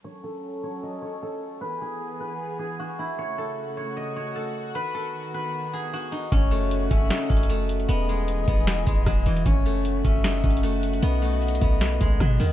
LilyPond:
<<
  \new Staff \with { instrumentName = "Soft synth lead" } { \time 4/4 \key fis \dorian \tempo 4 = 153 r1 | r1 | r1 | r1 |
cis''4. e''4. r4 | dis''1 | cis''4. e''4. r4 | dis''1 | }
  \new Staff \with { instrumentName = "Guzheng" } { \time 4/4 \key fis \dorian cis''8 a'4 cis''8 dis''8 cis''8 a'4 | b'8 gis'4 b'8 r8 gis'8 fis'8 e'8 | cis''8 a'4 cis''8 dis''8 cis''8 a'4 | b'8 a'4 b'8 r8 gis'8 fis'8 dis'8 |
cis'8 a4 cis'8 dis'8 cis'8 a4 | b8 gis4 b8 r8 gis8 fis8 e8 | cis'8 a4 cis'8 dis'8 cis'8 a4 | b8 a4 b8 r8 gis8 fis8 dis8 | }
  \new Staff \with { instrumentName = "String section" } { \time 4/4 \key fis \dorian << { a'1 | gis'1 | fis'1~ | fis'1 |
fis'1 | gis'1 | fis'1~ | fis'1 | } \\ { <fis cis'>1 | <e b>1 | <cis a>1 | <dis b>1 |
<cis a>1 | <e b>1 | <cis a>1 | <dis b>1 | } >> }
  \new Staff \with { instrumentName = "808-style bass" } { \clef bass \time 4/4 \key fis \dorian r1 | r1 | r1 | r1 |
fis,,4. fis,,8 r8 fis,,4. | e,,4. e,,4 e,,8 e,,8 e,,8 | fis,,4. fis,,4 fis,,4. | b,,4. b,,4 b,,8 b,8 dis,8 | }
  \new DrumStaff \with { instrumentName = "Drums" } \drummode { \time 4/4 r4 r4 r4 r4 | r4 r4 r4 r4 | r4 r4 r4 r4 | r4 r4 r4 r4 |
<hh bd>4 hh8 <hh bd>8 \tuplet 3/2 { <hh sn>16 r16 r16 <hh bd>16 hh16 hh16 } hh8 hh16 hh16 | hh4 hh8 <hh bd>8 <hh sn>8 <hh bd>8 <hh bd ss>8 <hh hho>16 hh16 | <hh bd>4 hh8 <hh bd>8 \tuplet 3/2 { <hh sn>16 r16 r16 <hh bd>16 hh16 hh16 } hh8 hh16 hh16 | hh4 \tuplet 3/2 { hh16 hh16 hh16 <hh bd>16 r16 r16 } <hh sn>8 <hh bd>8 <hh bd ss>8 hho8 | }
>>